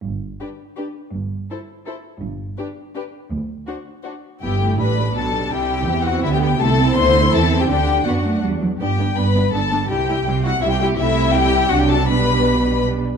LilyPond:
<<
  \new Staff \with { instrumentName = "Violin section" } { \time 3/4 \key g \major \tempo 4 = 164 r4 b'4 b'4 | r4 c''4 c''4 | r4 b'4 b'4 | r4 c''4 c''4 |
g''4 b''4 a''4 | g''4. fis''8 e''16 g''16 g''8 | a''4 c'''4 a''8. g''16 | g''4 fis''4 r4 |
g''4 b''4 a''4 | g''4. fis''8 e''16 g''16 g''8 | e''4 g''4 fis''16 g''16 a''8 | b''2 r4 | }
  \new Staff \with { instrumentName = "Violin section" } { \time 3/4 \key g \major r4 g'4 g'4 | r4 a'4 a'4 | r4 g'4 g'4 | r4 fis'4 fis'4 |
g'4 b'4 a'4 | g'4. fis'8 e'16 g'16 g'8 | a'4 c''4 a'8. g'16 | g'4 fis'4 r4 |
g'4 b'4 a'4 | g'4. fis'8 e'16 g'16 g'8 | e'4 g'4 fis'16 g'16 a'8 | b'2 r4 | }
  \new Staff \with { instrumentName = "Viola section" } { \time 3/4 \key g \major << { r2. | r2. | r2. | r2. |
e'4 d'2 | e'4 e'4 g'4 | e'2. | d'2~ d'8 r8 |
d'8 d'8 d'8 d'8 d'8 d'8 | e'8 e'8 e'8 e'8 e'8 e'8 | e'2 d'4 | d'2~ d'8 r8 | } \\ { r4 d'4 d'4 | r4 e'4 e'4 | r4 d'4 d'4 | r4 d'4 d'4 |
b8 a8 g8 g8 fis8 g8~ | g4 c'4 b4 | a8 c'8 b8 a8 c'4 | d'2~ d'8 r8 |
b8 b8 b8 b8 b8 b8 | g8 g8 g8 g8 g8 g8 | a4 g4 fis4 | g2~ g8 r8 | } >> }
  \new Staff \with { instrumentName = "Cello section" } { \clef bass \time 3/4 \key g \major g,4 r2 | g,4 r2 | g,4 r2 | d,4 r2 |
g,4 a,4 b,4 | c4 e4 d4 | c4 d4 e4 | d4 b8 a8 g8 fis8 |
g,4 g,4 g,4 | c4 c4 c4 | c2 c4 | b,2~ b,8 r8 | }
  \new Staff \with { instrumentName = "Double bass section" } { \clef bass \time 3/4 \key g \major g,,4 r2 | g,,4 r2 | g,,4 r2 | d,4 r2 |
g,,4 a,,4 b,,4 | c,4 e,4 d,4 | c,4 d,4 e,4 | d,4 fis,4 e,4 |
g,,4 g,,4 g,,4 | c,4 c,4 c,4 | c,2 c,4 | b,,2~ b,,8 r8 | }
>>